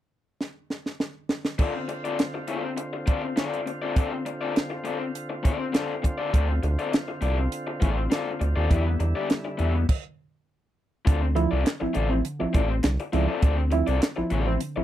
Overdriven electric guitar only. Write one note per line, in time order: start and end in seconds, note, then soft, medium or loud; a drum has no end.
1.59 1.77 C4 medium
1.59 1.75 F4 medium
1.59 1.74 A4 medium
1.59 1.73 D5 medium
1.75 muted overdriven electric guitar stroke soft
1.88 muted overdriven electric guitar stroke soft
2.04 2.17 C4 medium
2.04 2.17 F4 medium
2.04 2.17 A4 medium
2.04 2.17 D5 medium
2.18 muted overdriven electric guitar stroke soft
2.34 muted overdriven electric guitar stroke soft
2.48 2.69 C4 medium
2.48 2.64 F4 medium
2.48 2.63 A4 medium
2.48 2.63 D5 medium
2.64 muted overdriven electric guitar stroke soft
2.77 muted overdriven electric guitar stroke soft
2.93 muted overdriven electric guitar stroke soft
3.06 3.25 C4 medium
3.06 3.22 F4 medium
3.06 3.22 A4 medium
3.06 3.21 D5 medium
3.23 muted overdriven electric guitar stroke soft
3.36 3.57 C4 medium
3.36 3.57 F4 medium
3.36 3.58 A4 medium
3.36 3.58 D5 medium
3.66 muted overdriven electric guitar stroke soft
3.82 3.95 C4 medium
3.82 3.95 F4 medium
3.82 3.95 A4 medium
3.82 3.95 D5 medium
3.96 4.14 C4 medium
3.96 4.12 F4 medium
3.96 4.11 A4 medium
3.96 4.10 D5 medium
4.12 muted overdriven electric guitar stroke soft
4.26 muted overdriven electric guitar stroke soft
4.41 4.54 C4 soft
4.41 4.54 F4 soft
4.41 4.54 A4 medium
4.41 4.54 D5 medium
4.55 muted overdriven electric guitar stroke soft
4.70 muted overdriven electric guitar stroke soft
4.84 5.03 C4 medium
4.84 4.99 F4 medium
4.84 4.99 A4 medium
4.84 4.98 D5 medium
4.99 muted overdriven electric guitar stroke soft
5.29 muted overdriven electric guitar stroke soft
5.43 5.64 C4 medium
5.43 5.58 F4 medium
5.43 5.58 A4 medium
5.43 5.57 D5 medium
5.59 muted overdriven electric guitar stroke soft
5.72 5.91 C4 medium
5.72 5.92 F4 medium
5.72 5.92 A4 medium
5.72 5.92 D5 medium
6.02 muted overdriven electric guitar stroke soft
6.18 6.31 C4 soft
6.18 6.32 F4 soft
6.18 6.32 A4 soft
6.18 6.31 D5 medium
6.32 6.51 C4 medium
6.32 6.49 F4 medium
6.32 6.49 A4 medium
6.32 6.48 D5 medium
6.49 muted overdriven electric guitar stroke soft
6.63 muted overdriven electric guitar stroke soft
6.79 6.92 C4 soft
6.79 6.92 F4 medium
6.79 6.92 A4 soft
6.79 6.91 D5 medium
6.93 muted overdriven electric guitar stroke soft
7.08 muted overdriven electric guitar stroke soft
7.21 7.40 C4 medium
7.21 7.37 F4 medium
7.21 7.37 A4 medium
7.21 7.36 D5 medium
7.38 muted overdriven electric guitar stroke soft
7.67 muted overdriven electric guitar stroke soft
7.80 8.02 C4 medium
7.80 7.96 F4 medium
7.80 7.96 A4 medium
7.80 7.95 D5 medium
7.96 muted overdriven electric guitar stroke soft
8.10 8.29 C4 medium
8.10 8.29 F4 medium
8.10 8.29 A4 medium
8.10 8.29 D5 medium
8.40 muted overdriven electric guitar stroke soft
8.56 8.69 C4 medium
8.56 8.69 F4 medium
8.56 8.69 A4 medium
8.56 8.69 D5 medium
8.70 8.88 B3 medium
8.70 8.86 E4 medium
8.70 8.85 G4 medium
8.70 8.84 D5 medium
8.85 muted overdriven electric guitar stroke soft
9.00 muted overdriven electric guitar stroke soft
9.15 9.28 B3 soft
9.15 9.29 E4 medium
9.15 9.28 G4 medium
9.15 9.28 D5 medium
9.29 muted overdriven electric guitar stroke soft
9.45 muted overdriven electric guitar stroke soft
9.58 9.76 B3 medium
9.58 9.74 E4 medium
9.58 9.74 G4 medium
9.58 9.73 D5 medium
9.75 muted overdriven electric guitar stroke soft
11.05 11.24 C4 medium
11.05 11.22 F4 medium
11.05 11.21 A4 medium
11.05 11.21 D5 medium
11.22 muted overdriven electric guitar stroke soft
11.35 muted overdriven electric guitar stroke soft
11.51 11.63 C4 soft
11.51 11.63 F4 medium
11.51 11.64 A4 soft
11.51 11.64 D5 medium
11.64 muted overdriven electric guitar stroke soft
11.80 muted overdriven electric guitar stroke soft
11.93 12.12 C4 medium
11.93 12.10 F4 medium
11.93 12.10 A4 medium
11.93 12.09 D5 medium
12.10 muted overdriven electric guitar stroke soft
12.40 muted overdriven electric guitar stroke soft
12.53 12.72 C4 medium
12.53 12.69 F4 medium
12.53 12.69 A4 medium
12.53 12.68 D5 loud
12.70 muted overdriven electric guitar stroke soft
12.83 muted overdriven electric guitar stroke soft
13.00 muted overdriven electric guitar stroke medium
13.13 13.27 C4 medium
13.13 13.28 F4 medium
13.13 13.27 A4 medium
13.13 13.27 D5 medium
13.28 13.40 C4 medium
13.28 13.41 F4 medium
13.28 13.42 A4 medium
13.28 13.41 D5 medium
13.42 13.60 C4 medium
13.42 13.57 F4 medium
13.42 13.56 A4 medium
13.42 13.56 D5 medium
13.57 muted overdriven electric guitar stroke soft
13.71 muted overdriven electric guitar stroke soft
13.87 14.00 C4 soft
13.87 14.00 F4 medium
13.87 14.00 A4 medium
13.87 14.00 D5 medium
14.01 muted overdriven electric guitar stroke soft
14.16 muted overdriven electric guitar stroke soft
14.30 14.52 C4 medium
14.30 14.46 F4 medium
14.30 14.46 A4 medium
14.30 14.45 D5 medium
14.46 muted overdriven electric guitar stroke soft
14.76 muted overdriven electric guitar stroke soft